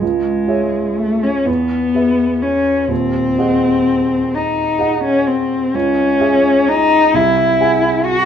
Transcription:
0.00 C#2 G#3
0.48 G#4 C#5 E5
0.98 A3
1.23 C#4
1.46 E2 B3
1.95 G#4 B4 E5
2.42 C#4
2.88 D#1 D#2 C4
3.38 G#4 D#5 F#5
4.35 D#4
4.79 G#4 D#5 F#5
5.04 C#4
5.27 C4
5.74 C#2 C#4
6.21 G#4 E5 G#5
6.69 D#4
7.14 C2 E4
7.61 G#4 F#5 G#5
8.05 F#4

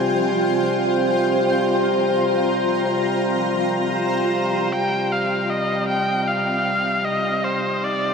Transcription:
Already playing: C3 G3 C4 F4 C5 G5 G#5
0.80 A#5
3.95 C5
4.70 C3 G3 C4 G5
5.12 F5
5.41 G4
5.50 D#5
5.87 C5 G5
6.08 D#4
6.27 F5
7.05 D#5
7.44 C5
7.84 D5

